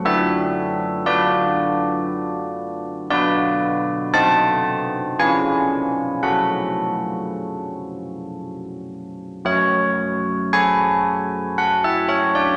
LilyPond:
\new Staff \with { instrumentName = "Church bells" } { \time 3/4 \key fis \minor \tempo 4 = 57 << { e''4 d''2 | d''4 a''4 gis''4 | fis''2 r4 | cis''4 gis''4 fis''16 e''16 cis''16 d''16 | } \\ { <d' fis' b'>4 <d' fis' b'>2 | <b fis' b'>4 <c' ges' ees''>4 <cis' eis' b'>4 | <fis fis' a'>2. | fis4 <fis' a'>2 | } >> }